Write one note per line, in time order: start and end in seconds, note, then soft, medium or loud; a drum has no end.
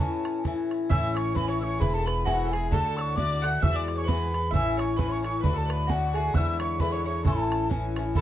0.00 0.43 A2 medium
0.00 0.45 E3 medium
0.00 0.45 C#4 medium
0.00 0.47 E4 medium
0.00 0.45 A5 medium
0.25 bodhran medium
0.44 0.88 A2 medium
0.44 0.89 E3 medium
0.44 0.90 C#4 medium
0.44 0.90 E4 medium
0.44 bodhran medium
0.71 bodhran medium
0.89 1.79 A1 medium
0.89 1.33 A2 medium
0.89 1.35 E3 medium
0.89 1.36 C#4 medium
0.89 1.37 E4 medium
0.89 1.17 E5 medium
0.89 1.14 E5 loud
0.89 1.18 E6 loud
0.89 bodhran medium
1.14 1.36 C#5 medium
1.14 1.34 C#5 medium
1.14 1.38 C#6 medium
1.14 bodhran medium
1.34 1.58 A2 medium
1.34 1.59 E3 medium
1.34 1.60 C#4 medium
1.34 1.61 E4 medium
1.34 1.50 B4 medium
1.34 1.48 B4 medium
1.34 1.48 B5 loud
1.34 bodhran medium
1.48 1.60 C#5 medium
1.48 1.60 C#6 medium
1.59 1.78 A2 soft
1.59 1.79 E3 soft
1.59 1.81 C#4 soft
1.59 1.80 E4 medium
1.59 1.83 C#5 medium
1.59 1.80 C#5 medium
1.59 1.65 E6 medium
1.64 1.82 C#6 medium
1.79 2.70 E1 medium
1.79 2.24 G#2 medium
1.79 2.25 E3 medium
1.79 2.26 B3 medium
1.79 2.27 E4 medium
1.79 1.93 B4 medium
1.79 1.95 B4 medium
1.79 1.95 B5 medium
1.79 bodhran medium
1.94 2.05 A4 medium
1.94 2.09 A4 medium
1.94 2.08 A5 medium
2.06 2.25 B4 medium
2.06 2.26 B4 medium
2.06 2.28 B5 medium
2.06 bodhran medium
2.25 2.50 G#2 medium
2.25 2.52 E3 medium
2.25 2.52 B3 medium
2.25 2.53 E4 medium
2.25 2.46 F#4 medium
2.25 2.51 F#4 medium
2.25 2.31 G#5 medium
2.25 bodhran medium
2.30 2.53 F#5 loud
2.45 2.52 A4 medium
2.51 2.71 G#2 soft
2.51 2.71 E3 soft
2.51 2.72 B3 soft
2.51 2.73 E4 soft
2.51 2.71 G#4 medium
2.51 2.74 G#4 medium
2.51 2.70 G#5 medium
2.51 bodhran medium
2.71 3.61 D2 medium
2.71 3.15 A2 medium
2.71 3.17 D3 medium
2.71 3.18 A3 medium
2.71 3.18 F#4 medium
2.71 3.16 A4 loud
2.71 2.98 A4 medium
2.71 2.98 A5 loud
2.71 bodhran medium
2.97 3.18 C#5 medium
2.97 3.02 E6 medium
2.97 bodhran medium
3.01 3.18 C#6 loud
3.16 3.42 A2 medium
3.16 3.43 D3 medium
3.16 3.44 A3 medium
3.16 3.44 F#4 medium
3.16 3.43 D5 loud
3.16 3.42 D5 medium
3.16 3.41 D6 loud
3.16 bodhran medium
3.42 3.61 A2 soft
3.42 3.62 D3 soft
3.42 3.63 A3 soft
3.42 3.61 F#5 medium
3.42 3.64 F#6 medium
3.42 bodhran medium
3.46 3.63 F#4 medium
3.61 4.52 E2 medium
3.61 4.06 G#2 medium
3.61 4.07 E3 medium
3.61 4.08 B3 medium
3.61 4.09 F#4 medium
3.61 3.77 E5 loud
3.61 3.74 E5 medium
3.61 3.77 E6 loud
3.61 bodhran medium
3.73 3.95 D5 medium
3.73 3.97 D5 medium
3.73 3.99 D6 medium
3.88 bodhran medium
3.96 4.03 C#5 medium
3.96 4.09 C#5 medium
3.96 4.09 C#6 medium
4.04 4.31 G#2 medium
4.04 4.48 B4 medium
4.04 4.52 B4 medium
4.08 4.32 E3 medium
4.08 4.33 B3 medium
4.08 4.35 F#4 medium
4.08 4.53 B5 medium
4.08 bodhran medium
4.32 4.52 G#2 medium
4.32 4.53 E3 soft
4.32 4.54 B3 medium
4.32 4.54 F#4 soft
4.32 bodhran medium
4.51 5.42 A1 medium
4.51 4.96 A2 medium
4.51 4.97 E3 medium
4.51 4.98 C#4 medium
4.51 4.76 E5 loud
4.51 4.77 E5 loud
4.51 4.82 E6 loud
4.51 bodhran medium
4.56 4.99 E4 medium
4.77 4.96 C#5 medium
4.77 4.97 C#5 medium
4.77 5.02 C#6 medium
4.77 bodhran medium
4.96 5.22 A2 medium
4.96 5.23 E3 medium
4.96 5.24 C#4 medium
4.96 5.25 E4 medium
4.96 5.08 B4 medium
4.96 5.10 B4 medium
4.96 5.13 B5 loud
4.96 bodhran medium
5.08 5.21 C#5 medium
5.08 5.22 C#5 medium
5.08 5.24 C#6 medium
5.22 5.42 A2 soft
5.22 5.44 E3 soft
5.22 5.44 C#4 soft
5.22 5.45 E4 medium
5.22 5.40 C#5 medium
5.22 5.41 C#5 medium
5.22 5.43 C#6 loud
5.22 bodhran medium
5.41 6.33 D2 medium
5.41 5.87 A2 medium
5.41 5.89 D3 medium
5.41 5.53 B4 medium
5.41 5.57 B4 medium
5.41 5.59 B5 loud
5.41 bodhran medium
5.45 5.89 A3 medium
5.45 5.90 F#4 medium
5.53 5.65 A4 medium
5.53 5.71 A4 medium
5.58 5.72 A5 medium
5.65 5.85 B4 medium
5.69 5.87 B4 medium
5.69 5.91 B5 medium
5.69 bodhran medium
5.87 6.13 A2 medium
5.87 6.14 D3 medium
5.87 6.15 A3 medium
5.87 6.13 F#4 medium
5.87 6.36 F#4 medium
5.87 5.94 G#5 medium
5.87 bodhran medium
5.92 6.16 F#4 medium
5.92 6.17 F#5 medium
6.13 6.34 A2 soft
6.13 6.34 D3 soft
6.13 6.35 A3 medium
6.13 6.36 F#4 medium
6.13 6.32 G#4 medium
6.13 6.36 G#5 medium
6.13 bodhran medium
6.34 7.24 E2 medium
6.34 6.78 G#2 medium
6.34 6.78 D3 medium
6.34 6.80 B3 medium
6.34 6.81 E4 medium
6.34 6.61 E5 medium
6.34 6.60 E5 loud
6.34 6.39 F#6 loud
6.34 bodhran medium
6.38 6.60 E6 loud
6.60 6.79 C#5 medium
6.60 6.82 C#6 medium
6.60 bodhran medium
6.79 7.03 G#2 medium
6.79 7.05 D3 medium
6.79 7.06 B3 medium
6.79 7.07 E4 medium
6.79 6.92 B4 medium
6.79 6.94 B5 medium
6.79 bodhran medium
6.92 7.05 C#5 medium
6.92 7.04 C#5 medium
6.92 7.05 C#6 medium
7.05 7.24 G#2 soft
7.05 7.25 D3 soft
7.05 7.26 B3 soft
7.05 7.26 E4 soft
7.05 7.24 C#5 medium
7.05 7.24 C#6 medium
7.25 8.14 A1 medium
7.25 7.68 A2 medium
7.25 7.69 E3 medium
7.25 7.71 C#4 medium
7.25 7.71 E4 loud
7.25 7.67 A4 medium
7.25 7.68 A4 medium
7.25 7.68 A5 medium
7.25 bodhran medium
7.52 bodhran medium
7.70 7.95 A2 medium
7.70 7.95 E3 medium
7.70 7.97 C#4 medium
7.70 7.97 E4 medium
7.70 bodhran medium
7.96 8.15 A2 soft
7.96 8.16 E3 medium
7.96 8.17 C#4 medium
7.96 8.17 E4 medium
7.96 bodhran medium
8.15 8.21 A2 medium
8.15 8.21 F#3 medium
8.15 8.21 C#4 medium
8.15 8.21 A4 loud
8.15 8.21 A4 medium
8.15 8.21 B5 loud
8.15 bodhran medium